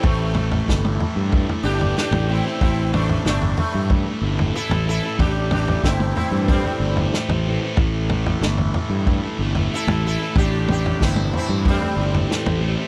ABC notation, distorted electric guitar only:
X:1
M:4/4
L:1/16
Q:1/4=93
K:Am
V:1 name="Distorted electric guitar" clef=bass
[A,,E,A,]2 [A,,E,A,] [E,A,] [A,,E,A,]2 [A,,E,A,]2 [A,,E,A,] [E,A,] [A,,E,A,] [E,A,] [A,,E,A,]2 [A,,E,A,] [E,A,] | [A,,E,A,]2 [A,,E,A,] [E,A,] [A,,E,A,]2 [A,,E,A,]2 [A,,E,A,] [E,A,] [A,,E,A,] [E,A,] [A,,E,A,]2 [A,,E,A,] [E,A,] | [A,,E,A,]2 [A,,E,A,] [E,A,] [A,,E,A,]2 [A,,E,A,]2 [A,,E,A,] [E,A,] [A,,E,A,] [E,A,] [A,,E,A,]2 [A,,E,A,] [E,A,] | [A,,E,A,]2 [A,,E,A,] [E,A,] [A,,E,A,]2 [A,,E,A,]2 [A,,E,A,] [E,A,] [A,,E,A,] [E,A,] [A,,E,A,]2 [A,,E,A,] [E,A,] |
[A,,E,A,]2 [A,,E,A,] [E,A,] [A,,E,A,]2 [A,,E,A,]2 [A,,E,A,] [E,A,] [A,,E,A,] [E,A,] [A,,E,A,]2 [A,,E,A,] [E,A,] |]